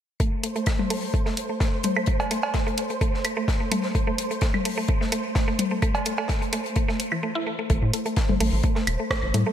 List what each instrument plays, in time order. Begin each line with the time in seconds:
0.20 synth arpeggio sound A3, synth texture C5, kick, closed hi-hat
0.43 synth arpeggio sound A3, closed hi-hat
0.56 synth arpeggio sound A3, closed hi-hat
0.66 kick, snare, closed hi-hat, claves
0.79 synth arpeggio sound A3, high tom
0.90 synth arpeggio sound A3, closed hi-hat, open hi-hat
1.14 synth arpeggio sound A3, kick, closed hi-hat
1.26 synth arpeggio sound A3, snare
1.37 closed hi-hat
1.49 synth arpeggio sound A3
1.60 synth arpeggio sound A3, kick, snare, closed hi-hat
1.83 synth arpeggio sound A3, closed hi-hat, high tom
1.96 synth arpeggio sound A3, claves
2.06 kick, closed hi-hat
2.20 synth arpeggio sound A3, closed hi-hat, cowbell
2.31 synth arpeggio sound A3, closed hi-hat
2.43 cowbell
2.54 synth arpeggio sound A3, kick, snare, closed hi-hat
2.67 synth arpeggio sound A3, closed hi-hat
2.77 closed hi-hat
2.90 synth arpeggio sound A3, closed hi-hat
3.01 synth arpeggio sound A3, kick, closed hi-hat
3.14 snare
3.24 synth arpeggio sound A3, closed hi-hat, claves
3.37 synth arpeggio sound A3
3.48 kick, snare, closed hi-hat
3.60 synth arpeggio sound A3
3.71 synth arpeggio sound A3, closed hi-hat, high tom
3.83 snare
3.95 synth arpeggio sound A3, kick, closed hi-hat
4.07 synth arpeggio sound A3
4.18 closed hi-hat
4.31 synth arpeggio sound A3, closed hi-hat
4.41 synth arpeggio sound A3, kick, snare, closed hi-hat
4.54 high tom, claves
4.65 synth arpeggio sound A3, closed hi-hat, open hi-hat
4.78 synth arpeggio sound A3
4.88 kick, closed hi-hat
5.01 synth arpeggio sound A3, snare
5.12 synth arpeggio sound A3, closed hi-hat
5.35 synth arpeggio sound A3, kick, snare, closed hi-hat
5.48 synth arpeggio sound A3
5.59 closed hi-hat, high tom
5.71 synth arpeggio sound A3
5.82 synth arpeggio sound A3, kick, closed hi-hat, claves
5.95 closed hi-hat, cowbell
6.05 synth arpeggio sound A3, closed hi-hat
6.18 synth arpeggio sound A3, cowbell
6.28 kick, snare, closed hi-hat
6.42 synth arpeggio sound A3, closed hi-hat
6.53 synth arpeggio sound A3, closed hi-hat
6.66 closed hi-hat
6.76 synth arpeggio sound A3, kick, closed hi-hat
6.88 synth arpeggio sound A3, snare
7.00 closed hi-hat
7.12 synth arpeggio sound E3, claves
7.23 synth arpeggio sound A3
7.35 synth arpeggio sound E4
7.47 synth arpeggio sound A3
7.59 synth arpeggio sound A3
7.70 analog synth bass A1, synth arpeggio sound A3, synth texture C5, kick, closed hi-hat
7.82 analog synth bass A2
7.93 synth arpeggio sound A3, closed hi-hat
8.06 synth arpeggio sound A3, closed hi-hat
8.16 kick, snare, closed hi-hat
8.29 analog synth bass G1, synth arpeggio sound A3, high tom
8.40 analog synth bass A1, synth arpeggio sound A3, closed hi-hat, open hi-hat
8.53 analog synth bass A1
8.63 synth arpeggio sound A3, kick, closed hi-hat
8.75 synth arpeggio sound A3, snare
8.87 analog synth bass E1, closed hi-hat, claves
9.00 synth arpeggio sound A3
9.11 synth arpeggio sound A3, kick, cross-stick, snare, closed hi-hat
9.23 analog synth bass A1
9.34 analog synth bass A2, synth arpeggio sound A3, closed hi-hat, high tom
9.46 synth arpeggio sound A3